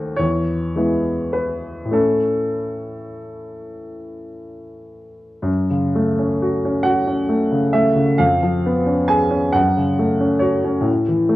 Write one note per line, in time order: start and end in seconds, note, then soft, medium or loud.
0.00 0.22 D#2 soft
0.00 0.15 A3 soft
0.00 0.15 C4 soft
0.00 0.15 F#4 soft
0.16 0.74 E2 soft
0.16 1.33 C#5 medium
0.76 1.91 G#3 soft
0.76 1.92 B3 soft
0.76 1.92 E4 soft
1.33 1.95 B4 soft
1.85 5.39 A2 soft
1.91 5.42 A3 soft
1.91 5.43 C#4 soft
1.91 5.43 E4 soft
1.91 3.73 A4 soft
5.43 8.14 F#2 soft
5.71 6.09 C#3 soft
5.95 6.32 A3 soft
6.19 6.55 C#4 soft
6.42 6.77 F#4 soft
6.65 7.00 C#4 soft
6.83 7.21 F#4 soft
6.83 7.74 F#5 medium
7.07 7.43 C#4 soft
7.29 7.66 A3 soft
7.52 7.89 C#3 soft
7.73 8.11 A3 soft
7.73 8.20 E5 medium
7.95 8.19 C#3 soft
8.18 9.52 F2 soft
8.18 9.10 F5 medium
8.43 8.79 F3 soft
8.66 9.02 B3 soft
8.86 9.24 C#4 soft
9.08 9.47 G#4 soft
9.08 9.55 G#5 medium
9.31 9.55 C#4 soft
9.53 10.83 F#2 soft
9.53 10.43 F#5 medium
9.77 10.13 C#3 soft
9.99 10.35 A3 soft
10.20 10.57 C#4 soft
10.39 10.78 F#4 soft
10.39 10.85 C#5 medium
10.65 10.87 C#4 soft
10.81 11.36 A2 soft
11.08 11.36 E3 soft
11.29 11.36 A3 soft